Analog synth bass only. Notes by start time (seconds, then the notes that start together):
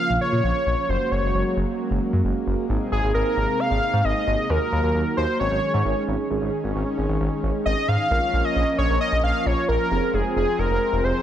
0.10 A#1
0.32 A#2
0.44 A#1
0.66 A#1
0.89 F#1
1.11 F#1
1.23 F#1
1.34 F#1
1.56 F#1
1.90 F#1
2.13 F#2
2.24 F#1
2.47 F#1
2.69 G#1
2.92 G#1
3.03 G#1
3.14 G#1
3.37 G#1
3.71 G#1
3.93 G#2
4.04 G#1
4.27 G#1
4.49 D#2
4.72 D#2
4.83 D#2
4.95 D#2
5.17 D#2
5.40 G#1
5.51 G#1
5.74 G#2
5.85 G#1
6.08 G#1
6.30 G#1
6.41 G#1
6.64 G#1
6.75 G#1
6.98 G#1
7.09 G#1
7.20 G#1
7.43 G#1
7.66 G#1
7.88 G#2
8.11 A#1
8.33 A#1
8.56 A#1
8.78 A#1
8.89 A#1
9.12 A#1
9.23 A#1
9.46 A#1
9.69 A#1
9.91 F1
10.13 F1
10.36 F1
10.59 F1
10.70 F1
10.92 F1
11.04 F1